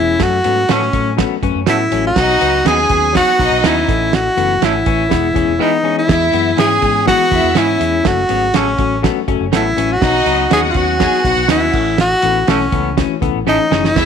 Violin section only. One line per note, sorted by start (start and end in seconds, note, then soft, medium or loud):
2.16 2.62 D#4 loud
2.16 2.62 D#5 loud
2.66 3.12 G#4 loud
2.66 3.12 G#5 loud
3.15 3.34 F#4 loud
3.15 3.34 F#5 loud
3.39 3.85 D#4 loud
3.39 3.85 D#5 loud
6.09 6.55 E4 loud
6.09 6.55 E5 loud
6.58 7.04 G#4 medium
6.58 7.04 G#5 loud
7.07 7.26 F#4 loud
7.07 7.26 F#5 loud
7.31 7.77 E4 loud
7.31 7.77 E5 loud
10.01 10.48 D#4 loud
10.01 10.47 D#5 loud
10.51 10.97 F#4 loud
10.51 10.97 F#5 loud
10.99 11.19 G#4 loud
10.99 11.19 G#5 loud
11.24 11.71 F#4 loud
11.24 11.71 F#5 loud
13.95 14.05 E4 loud
13.95 14.05 E5 loud